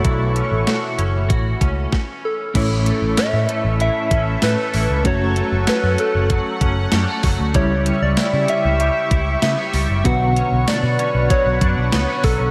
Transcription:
Already playing: fm electric piano B2 A3 E4 F#4 C#5, clean electric guitar A3, analog synth pad A4 E5 F#5 C#6, soft synth lead A4
0.05 picked electric bass B1, clean electric guitar E3, kick, closed hi-hat
0.36 clean electric guitar C#4, closed hi-hat
0.51 picked electric bass A1
0.67 clean electric guitar F#4, snare, closed hi-hat
0.98 picked electric bass F#1, clean electric guitar C#4, closed hi-hat
1.29 picked electric bass A1, clean electric guitar F#4, kick, closed hi-hat
1.61 picked electric bass C#2, clean electric guitar C#4, kick, closed hi-hat
1.93 kick, snare
2.25 soft synth lead A4
2.54 picked electric bass A1, fm electric piano A2 A3 C#4 E4 C#5, clean electric guitar E3, analog synth pad A4 E5 C#6, soft synth lead A4, kick, closed hi-hat, crash
2.86 clean electric guitar A3, closed hi-hat
3.02 picked electric bass A1
3.17 clean electric guitar C#4, soft synth lead E5, muted picked electric bass stroke, snare, closed hi-hat, tambourine
3.33 picked electric bass A2
3.48 clean electric guitar A3, closed hi-hat
3.64 picked electric bass A1
3.80 clean electric guitar E3, soft synth lead E5, closed hi-hat
4.11 picked electric bass A1, clean electric guitar C#4, kick, closed hi-hat
4.42 picked electric bass A2, clean electric guitar A3, soft synth lead B4, snare, closed hi-hat, tambourine
4.74 picked electric bass A1, clean electric guitar E3, open hi-hat
4.90 picked electric bass C#2
5.04 picked electric bass F#1, clean electric guitar F#3, fm electric piano A3 C#4 F#4 C#5, soft synth lead C#5, analog synth pad F#5, kick, closed hi-hat
5.36 clean electric guitar A3, closed hi-hat
5.52 picked electric bass F#1
5.67 clean electric guitar C#4, soft synth lead B4, muted picked electric bass stroke, snare, closed hi-hat, tambourine
5.83 picked electric bass F#2
5.98 clean electric guitar A3, soft synth lead A4, closed hi-hat
6.15 picked electric bass F#1
6.30 clean electric guitar F#3, kick, closed hi-hat
6.61 picked electric bass F#1, clean electric guitar C#4, kick, closed hi-hat
6.92 picked electric bass F#2, clean electric guitar G3, snare, closed hi-hat, tambourine
7.08 clean electric guitar A3
7.23 picked electric bass F#1, clean electric guitar F#3, kick, open hi-hat
7.40 picked electric bass D2
7.54 picked electric bass C#2, fm electric piano C#3 G3 E4 E5, clean electric guitar G3, analog synth pad G4 E5, soft synth lead C#5, kick, closed hi-hat
7.86 clean electric guitar C#4, closed hi-hat
8.02 picked electric bass C#2, soft synth lead D5
8.17 clean electric guitar E4, muted picked electric bass stroke, snare, closed hi-hat, tambourine
8.33 picked electric bass C#3
8.48 clean electric guitar C#4, soft synth lead E5, closed hi-hat
8.65 picked electric bass C#2
8.79 clean electric guitar G3, soft synth lead E5, closed hi-hat
9.11 picked electric bass C#2, clean electric guitar E4, kick, closed hi-hat
9.42 picked electric bass C#3, clean electric guitar B3, soft synth lead E5, snare, closed hi-hat, tambourine
9.58 clean electric guitar C#4
9.73 picked electric bass C#2, clean electric guitar G3, open hi-hat
9.89 picked electric bass F#1
10.04 picked electric bass B1, fm electric piano B2 D3 B3 F#4 B4, clean electric guitar F#3, analog synth pad B4 F#5, soft synth lead F#5, kick, closed hi-hat
10.36 clean electric guitar C#4, closed hi-hat
10.52 picked electric bass B1
10.67 clean electric guitar D4, soft synth lead D5, muted picked electric bass stroke, snare, closed hi-hat, tambourine
10.83 picked electric bass B2
10.99 clean electric guitar C#4, closed hi-hat
11.14 picked electric bass B1
11.30 clean electric guitar F#3, soft synth lead C#5, kick, closed hi-hat
11.46 picked electric bass B1
11.61 picked electric bass F#2, clean electric guitar D4, kick, closed hi-hat
11.77 picked electric bass B1
11.92 picked electric bass C#2, clean electric guitar B3, snare, closed hi-hat, tambourine
12.09 clean electric guitar C#4
12.24 picked electric bass B1, clean electric guitar F#3, soft synth lead A4, kick, open hi-hat
12.40 picked electric bass B1

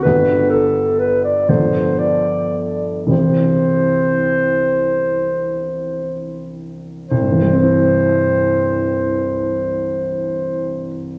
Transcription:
0.03 grand piano G1 D3 B3 G4, clarinet B4
0.50 clarinet A4
0.99 clarinet B4
1.24 clarinet D5
1.49 grand piano G1 F3 B3 A4, clarinet C5
1.98 clarinet D5
3.06 grand piano C2 E3 C4 G4, clarinet C5
7.09 grand piano C2, clarinet C5
7.21 grand piano G2
7.32 grand piano E3
7.42 grand piano G3
7.53 grand piano C4
7.63 grand piano E4

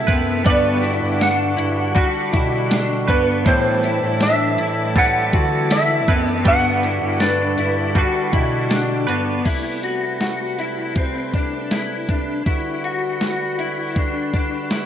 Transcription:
Already playing: tonewheel organ C3 A3 A4, clean electric guitar G3, electric slide guitar E5
0.07 bass clarinet F#2, clean electric guitar B3 C4 E4 B4, kick, closed hi-hat
0.44 bass clarinet G2, tonewheel organ D3 G3 D4 F#4, clean electric guitar G3 B3 D4, electric slide guitar D5, kick, closed hi-hat
0.48 clean electric guitar F#4 B4
0.82 clean electric guitar E4, closed hi-hat
1.02 bass clarinet G2
1.20 clean electric guitar D4, electric slide guitar F#5, snare, closed hi-hat, tambourine
1.56 bass clarinet G2, clean electric guitar E4, closed hi-hat
1.95 clean electric guitar G3 D4 F#4 B4, glockenspiel B6, kick, closed hi-hat
2.32 bass clarinet B2, clean electric guitar E4, kick, closed hi-hat
2.70 clean electric guitar D4, snare, closed hi-hat, tambourine
3.08 bass clarinet G2, clean electric guitar B3 D4 F#4 B4, electric slide guitar B4, kick, closed hi-hat
3.45 clean electric guitar A2 B2 E3 G3, bass clarinet A2, tonewheel organ E3 A3 A4, electric slide guitar C5, kick, closed hi-hat
3.49 clean electric guitar E4
3.83 clean electric guitar E4, closed hi-hat
4.02 bass clarinet A2
4.21 clean electric guitar D4, electric slide guitar E5, snare, closed hi-hat, tambourine
4.58 bass clarinet A2, clean electric guitar E4, closed hi-hat
4.96 clean electric guitar G3 C4 E4 G4 B4, electric slide guitar F#5, glockenspiel A6, kick, closed hi-hat
5.33 bass clarinet D3, clean electric guitar F#4, kick, closed hi-hat
5.71 clean electric guitar E4, electric slide guitar E5, glockenspiel E6, snare, closed hi-hat, tambourine
6.08 bass clarinet F#2, clean electric guitar B3 C4 E4 B4, kick, closed hi-hat
6.28 electric slide guitar D5
6.45 bass clarinet G2, tonewheel organ D3 G3 F#4, clean electric guitar G3 B3 D4, electric slide guitar F#5, kick, closed hi-hat
6.49 clean electric guitar F#4 B4
6.83 clean electric guitar E4, closed hi-hat
7.02 bass clarinet G2
7.20 clean electric guitar D4, electric slide guitar B4, glockenspiel A6, snare, closed hi-hat, tambourine
7.57 bass clarinet G2, clean electric guitar E4, closed hi-hat
7.95 clean electric guitar G3 D4 F#4 B4, kick, closed hi-hat
8.33 bass clarinet B2, clean electric guitar E4, kick, closed hi-hat
8.70 clean electric guitar D4, snare, closed hi-hat, tambourine
9.07 bass clarinet G2, clean electric guitar B3 D4 F#4 B4, closed hi-hat
9.45 tonewheel organ C3 G3 A3 B4, clean electric guitar E4, kick, closed hi-hat, crash
9.83 clean electric guitar F#4, closed hi-hat
10.21 clean electric guitar F#4, snare, closed hi-hat
10.58 clean electric guitar E4, closed hi-hat
10.96 clean electric guitar C4, kick, closed hi-hat
11.34 clean electric guitar D4, kick, closed hi-hat
11.71 clean electric guitar E4, snare, closed hi-hat
12.09 clean electric guitar D4, kick, closed hi-hat
12.46 tonewheel organ D3 G3 F#4 B4, clean electric guitar E4, kick, closed hi-hat
12.84 clean electric guitar F#4, closed hi-hat
13.21 clean electric guitar F#4, snare, closed hi-hat
13.59 clean electric guitar E4, closed hi-hat
13.96 clean electric guitar D4, kick, closed hi-hat
14.33 clean electric guitar D4, kick, closed hi-hat
14.70 clean electric guitar E4, snare, closed hi-hat

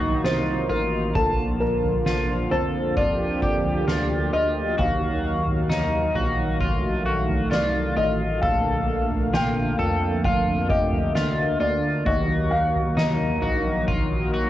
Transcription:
Already playing: analog synth bass A#1, analog synth pad D#3 F#3 A#3 D#4, clean electric guitar F#4
0.02 floor tom
0.24 analog synth bass C2, clean electric guitar F4, felt piano C5, snare
0.69 analog synth bass A1, clean electric guitar F4, felt piano A#4
1.15 analog synth bass A#1, analog synth pad D3 F3 F4, felt piano A4, clean electric guitar A5, kick, floor tom
1.60 felt piano A#4
1.84 floor tom
2.06 clean electric guitar F4, snare
2.51 analog synth bass F2, clean electric guitar A4, felt piano C5, floor tom
2.96 clean electric guitar F4, analog synth pad G4, felt piano D5, kick, floor tom
3.42 clean electric guitar G4, kick
3.65 floor tom
3.87 analog synth bass D2, clean electric guitar F4, snare
4.33 analog synth bass D2, clean electric guitar F4, felt piano D#5
4.78 analog synth bass D#2, analog synth pad D#3 F#3 F5, clean electric guitar F#4, felt piano F5, kick, floor tom
5.47 floor tom
5.70 clean electric guitar D#4, snare
6.15 analog synth bass A#1, clean electric guitar F#4, floor tom
6.61 analog synth pad A3, clean electric guitar F4, kick, floor tom
7.06 clean electric guitar F#4
7.29 floor tom
7.51 analog synth bass C2, clean electric guitar F4, felt piano D5, snare
7.97 analog synth bass A1, clean electric guitar F4, felt piano D#5
8.41 analog synth bass A#1, analog synth pad D3 A#3, clean electric guitar A4, felt piano F5, kick, floor tom
9.11 floor tom
9.33 clean electric guitar F4, felt piano G5, snare
9.79 analog synth bass F2, clean electric guitar A4, floor tom
10.24 clean electric guitar F4, felt piano F5, kick, floor tom
10.69 clean electric guitar G4, felt piano D#5, kick
10.93 floor tom
11.15 analog synth bass D2, clean electric guitar F4, snare
11.60 analog synth bass D2, clean electric guitar F4, felt piano D5
12.06 analog synth bass D#2, analog synth pad D#3 F#3, clean electric guitar F#4, felt piano D#5, kick, floor tom
12.51 felt piano F5
12.75 floor tom
12.97 clean electric guitar D#4, felt piano D#5, snare
13.42 analog synth bass A#1, clean electric guitar F#4, floor tom
13.88 analog synth pad D#4, clean electric guitar F4, kick, floor tom
14.34 clean electric guitar F#4

